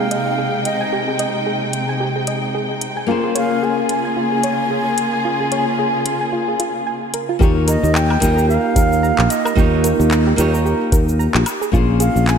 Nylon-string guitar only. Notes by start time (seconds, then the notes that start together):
Already playing: A#3 D#4 G4 G#4 C5
3.07 A#3 C#4 F4 G#4
3.11 C5
7.39 A#3 D#4 F4 G4
7.43 C#5
8.20 A#3 D#4 F4 G4
8.24 D#5
9.55 A#3 D#4 F4 G4
9.59 C#5
10.36 A#3 D#4 F4 G4
10.40 C#5
11.72 A#3 C#4 F4 G#4
11.76 C5